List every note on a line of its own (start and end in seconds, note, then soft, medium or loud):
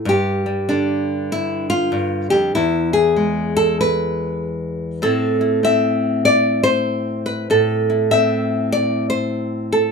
0.05 1.91 G2 medium
0.05 1.31 G4 medium
0.46 2.55 G3 soft
0.69 2.55 D3 medium
0.69 1.92 D4 medium
1.32 1.69 E4 medium
1.70 2.30 F4 medium
1.92 2.30 G2 medium
2.30 2.55 F2 medium
2.30 2.54 G4 medium
2.55 5.03 E2 medium
2.55 2.93 E4 medium
2.93 3.55 G#4 medium
3.16 5.00 G#3 medium
3.57 3.79 A4 loud
3.81 5.03 B4 medium
5.02 7.49 A2 medium
5.02 5.63 C4 medium
5.02 5.40 E4 medium
5.02 6.26 A4 medium
5.41 7.48 E4 soft
5.63 8.12 C4 medium
5.63 6.25 E5 loud
6.25 6.63 D5 loud
6.63 7.88 C5 loud
7.26 7.50 B4 medium
7.50 9.92 A2 medium
7.50 8.74 A4 medium
7.90 9.92 E4 soft
8.11 9.92 C4 medium
8.11 8.72 E5 loud
8.72 9.09 D5 loud
9.10 9.92 C5 loud
9.72 9.92 A4 medium